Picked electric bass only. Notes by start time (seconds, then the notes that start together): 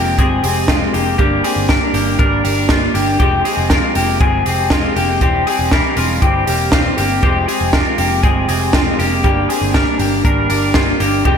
Already playing: F1
0.18 G1
0.43 F1
0.94 F1
1.19 G1
1.56 G1
1.94 G1
2.19 G#1
2.45 G1
2.95 G1
3.20 F1
3.57 F1
3.95 F1
4.20 G1
4.46 F1
4.96 F1
5.21 E1
5.59 E1
5.97 E1
6.22 G1
6.47 E1
6.98 G1
7.23 F1
7.61 F1
7.98 F1
8.23 G1
8.48 F1
8.99 F1
9.24 G1
9.61 G1
9.99 G1
10.25 G#1
10.50 G1
11.00 G1
11.25 F1